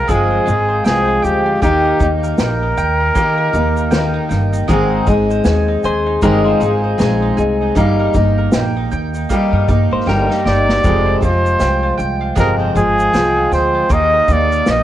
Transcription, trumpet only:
Already playing: A#4
0.10 G#4
0.86 G#4
1.24 G4
1.62 G4
2.40 A#4
10.48 D5
11.25 C5
12.40 A#4
12.78 G#4
13.54 C5
13.93 D#5
14.32 D5
14.71 D#5

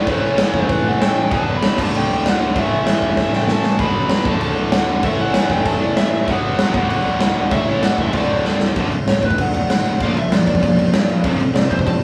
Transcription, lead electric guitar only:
0.09 C#5
0.67 B4
0.88 F#5
1.03 G5
1.34 A5
1.57 B5
1.81 A5
1.96 G5
2.28 F#5
2.60 E5
3.36 G5
3.51 A5
3.81 B5
4.04 B5
4.27 A5
4.42 A5
4.73 F#5
5.05 E5
5.21 F#5
5.52 G5
5.66 A5
5.80 D5
5.97 E5
6.31 F#5
6.89 F#5
7.52 E5
7.67 C#5
7.84 F#5
8.01 E5
8.14 D5
9.10 C#5
9.25 B4
9.41 F#5
9.55 F#5
9.71 F#5
10.02 F5
10.19 E5
10.33 D5
10.62 D5
11.55 D5
11.70 C5
11.86 A5

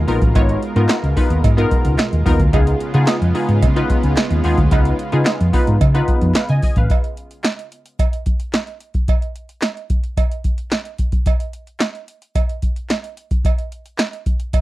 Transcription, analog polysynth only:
0.07 B3 D#4 F4 A#4
0.35 B3 D#4 F4 C#5
0.76 B3 D#4 F4 A#4
1.16 B3 D#4 F4 B4
1.57 B3 D#4 F4 A#4
2.26 B3 D#4 F4 A#4
2.53 B3 D#4 F4 G#4
2.94 B3 D#4 F4 G#4
3.34 B3 D#4 F4 G#4
3.76 B3 D#4 F4 B4
4.44 B3 D#4 F4 G#4
4.71 B3 D#4 F4 B4
5.12 B3 D#4 F4 G#4
5.53 B3 D#4 F4 B4
5.94 B3 D#4 F4 B4
6.35 B4 F5
6.50 D#5 G#5
6.63 D#5 G#5
6.77 B4 F5

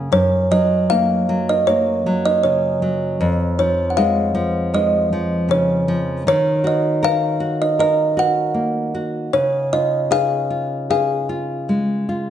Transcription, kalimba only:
0.13 C#5
0.52 D#5
0.90 F5
1.49 D#5
1.67 C#5
2.25 D#5
2.43 C#5
3.59 C#5
3.90 F#5
3.97 F5
4.74 D#5
5.51 C#5
6.28 C#5
6.67 D#5
7.04 F5
7.62 D#5
7.80 D#5
8.19 F#5
9.33 C#5
9.73 D#5
10.12 F5
10.91 F5

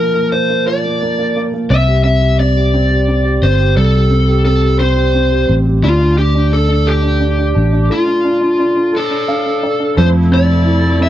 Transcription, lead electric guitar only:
Already playing: A#4
0.32 C5
0.68 D5
1.71 E5
2.04 E5
2.40 D5
3.43 C5
3.77 A4
4.45 A4
4.79 C5
5.84 F4
6.18 G4
6.53 A4
6.87 G4
7.92 F4
8.97 E4 A4
9.98 C5
10.34 D5
11.03 E5

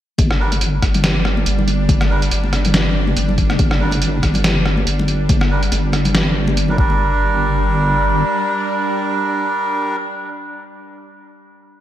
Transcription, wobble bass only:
0.19 G1
0.83 G1
1.46 G1
2.31 G1
3.17 G1
3.59 G1
4.23 G1
4.87 G1
5.72 G1
6.78 G1

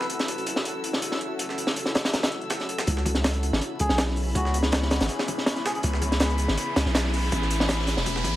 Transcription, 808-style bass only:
2.88 C#2
3.53 G#1
3.80 C#2
3.90 B1
4.35 C#2
5.01 G#1
5.84 C#2
6.49 G#1
6.76 C#2
6.86 B1
7.32 A1
7.97 E1
8.24 A1

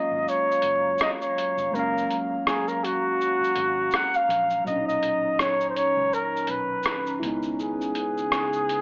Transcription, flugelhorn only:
Already playing: D#5
0.29 C#5
1.02 D#5
1.21 C#5
1.74 A#4
2.47 G#4
2.68 A#4
2.84 F#4
3.95 F#5
4.16 F5
4.67 D#5
4.87 D#5
5.40 C#5
5.69 C5
5.77 C#5
6.14 A#4
6.50 B4
7.60 G#4

